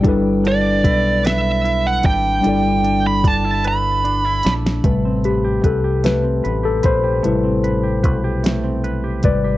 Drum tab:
HH |x-x-x-x-x-x-|x-x-x-x-x-x-|x-x-x-x-x-x-|x-x-x-x-x-x-|
SD |------o-----|----------oo|------o-----|------o-----|
BD |o---o-----o-|----o-------|o---o-----o-|----o-----o-|